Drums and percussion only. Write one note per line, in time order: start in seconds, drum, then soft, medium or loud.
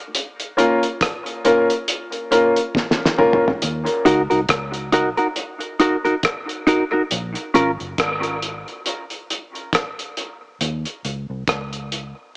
0.15 closed hi-hat medium
0.40 closed hi-hat medium
0.58 closed hi-hat medium
0.83 closed hi-hat medium
1.01 kick loud
1.01 cross-stick medium
1.01 closed hi-hat medium
1.26 closed hi-hat medium
1.45 closed hi-hat medium
1.70 closed hi-hat medium
1.88 closed hi-hat medium
2.12 closed hi-hat soft
2.32 closed hi-hat medium
2.56 closed hi-hat medium
2.75 kick loud
2.75 snare medium
2.91 snare medium
3.05 snare medium
3.19 mid tom medium
3.33 floor tom medium
3.48 floor tom medium
3.62 closed hi-hat medium
3.86 closed hi-hat medium
4.06 closed hi-hat medium
4.31 closed hi-hat soft
4.49 kick loud
4.49 cross-stick loud
4.49 closed hi-hat medium
4.74 closed hi-hat soft
4.92 closed hi-hat medium
5.17 closed hi-hat soft
5.36 closed hi-hat medium
5.60 closed hi-hat soft
5.80 closed hi-hat medium
6.05 closed hi-hat soft
6.23 kick loud
6.23 cross-stick loud
6.23 closed hi-hat medium
6.49 closed hi-hat soft
6.67 closed hi-hat medium
7.11 closed hi-hat medium
7.35 closed hi-hat medium
7.55 closed hi-hat medium
7.80 closed hi-hat soft
7.98 kick loud
7.98 cross-stick loud
7.98 closed hi-hat medium
8.23 closed hi-hat soft
8.42 closed hi-hat medium
8.68 closed hi-hat soft
8.86 closed hi-hat medium
9.10 closed hi-hat soft
9.30 closed hi-hat medium
9.55 closed hi-hat soft
9.73 kick loud
9.73 cross-stick loud
9.73 closed hi-hat medium
9.99 closed hi-hat medium
10.17 closed hi-hat medium
10.61 closed hi-hat medium
10.85 closed hi-hat medium
11.05 closed hi-hat medium
11.48 kick loud
11.48 cross-stick loud
11.48 closed hi-hat medium
11.73 closed hi-hat soft
11.92 closed hi-hat medium